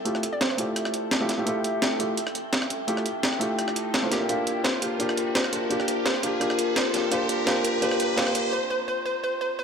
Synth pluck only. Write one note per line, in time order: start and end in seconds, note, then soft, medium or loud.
0.33 0.39 D5 medium
0.41 0.47 C5 medium
0.50 0.56 C5 medium
4.64 4.86 C5 medium
5.35 5.56 C5 medium
6.06 6.27 C5 medium
6.76 6.98 C5 medium
7.12 7.33 C5 medium
7.47 7.68 C5 medium
7.82 8.04 C5 loud
8.17 8.39 C5 medium
8.53 8.69 C5 loud
8.70 8.87 C5 loud
8.88 9.04 C5 loud
9.06 9.22 C5 loud
9.24 9.40 C5 loud
9.41 9.57 C5 loud
9.59 9.64 C5 loud